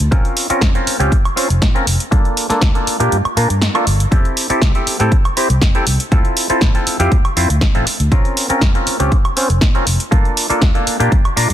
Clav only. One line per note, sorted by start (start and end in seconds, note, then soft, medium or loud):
0.11 0.46 C4 medium
0.11 0.47 C#4 medium
0.11 0.47 F4 medium
0.11 0.47 A#4 medium
0.50 0.72 C4 medium
0.50 0.72 C#4 medium
0.50 0.72 F4 medium
0.50 0.72 A#4 medium
0.75 0.97 C4 medium
0.75 0.97 C#4 medium
0.75 0.97 F4 medium
0.75 0.97 A#4 medium
0.99 1.16 C4 medium
0.99 1.17 C#4 medium
0.99 1.17 F4 medium
0.99 1.17 G4 loud
1.36 1.48 C4 medium
1.36 1.48 C#4 medium
1.36 1.48 F4 medium
1.36 1.48 C5 loud
1.75 1.85 C4 loud
1.75 1.85 C#4 medium
1.75 1.85 F4 medium
1.75 1.85 A#4 loud
2.11 2.46 A#3 medium
2.11 2.47 D4 medium
2.11 2.47 F4 medium
2.11 2.47 A4 loud
2.49 2.72 A#3 medium
2.49 2.72 D4 medium
2.49 2.72 F4 medium
2.49 2.72 A4 medium
2.75 2.97 A#3 medium
2.75 2.97 D4 medium
2.75 2.97 F4 medium
2.75 2.97 A4 medium
3.00 3.17 A#3 medium
3.00 3.17 D4 medium
3.00 3.17 F4 medium
3.00 3.17 G4 loud
3.37 3.48 A#3 medium
3.37 3.48 D4 medium
3.37 3.48 F4 medium
3.37 3.48 A#4 loud
3.75 3.85 A#3 loud
3.75 3.85 D4 medium
3.75 3.85 F4 medium
3.75 3.85 A4 loud
4.11 4.47 C4 medium
4.11 4.47 E4 medium
4.11 4.47 G4 medium
4.11 4.47 A4 medium
4.50 4.72 C4 medium
4.50 4.72 E4 medium
4.50 4.72 G4 medium
4.50 4.72 A4 medium
4.75 4.97 C4 medium
4.75 4.97 E4 medium
4.75 4.97 G4 medium
4.75 4.97 A4 medium
5.00 5.16 C4 medium
5.00 5.17 E4 medium
5.00 5.17 G4 medium
5.00 5.17 A4 loud
5.37 5.48 C4 loud
5.37 5.48 E4 medium
5.37 5.48 G4 medium
5.37 5.48 C5 loud
5.75 5.85 C4 loud
5.75 5.85 E4 medium
5.75 5.85 G4 loud
5.75 5.85 A4 loud
6.12 6.47 C4 medium
6.12 6.47 E4 medium
6.12 6.47 F4 medium
6.12 6.47 A4 loud
6.50 6.72 C4 medium
6.50 6.72 E4 medium
6.50 6.72 F4 medium
6.50 6.72 A4 medium
6.74 6.96 C4 medium
6.74 6.97 E4 medium
6.74 6.97 F4 medium
6.74 6.97 A4 medium
6.99 7.16 C4 medium
6.99 7.17 E4 medium
6.99 7.17 F4 medium
6.99 7.17 G4 loud
7.36 7.48 C4 medium
7.36 7.48 E4 medium
7.36 7.48 F4 medium
7.36 7.48 C5 loud
7.75 7.85 C4 loud
7.75 7.85 E4 loud
7.75 7.85 F4 loud
7.75 7.85 A4 loud
8.12 8.47 C4 medium
8.12 8.47 C#4 medium
8.12 8.47 F4 medium
8.12 8.47 A#4 medium
8.49 8.72 C4 medium
8.49 8.72 C#4 medium
8.49 8.72 F4 medium
8.49 8.72 A#4 medium
8.75 8.97 C4 medium
8.75 8.97 C#4 medium
8.75 8.97 F4 medium
8.75 8.97 A#4 medium
9.00 9.17 C4 medium
9.00 9.17 C#4 medium
9.00 9.17 F4 medium
9.00 9.17 G4 loud
9.36 9.48 C4 medium
9.36 9.48 C#4 medium
9.36 9.48 F4 medium
9.36 9.48 C5 loud
9.75 9.85 C4 loud
9.75 9.85 C#4 loud
9.75 9.85 F4 medium
9.75 9.85 A#4 loud
10.11 10.46 A#3 medium
10.11 10.47 D4 medium
10.11 10.47 F4 medium
10.11 10.47 A4 medium
10.49 10.72 A#3 medium
10.49 10.72 D4 medium
10.49 10.72 F4 medium
10.49 10.72 A4 medium
10.75 10.97 A#3 medium
10.75 10.97 D4 medium
10.75 10.97 F4 medium
10.75 10.97 A4 medium
11.00 11.17 A#3 medium
11.00 11.17 D4 medium
11.00 11.17 F4 medium
11.00 11.17 G4 loud
11.36 11.48 A#3 medium
11.36 11.48 D4 medium
11.36 11.48 F4 medium
11.36 11.48 A#4 loud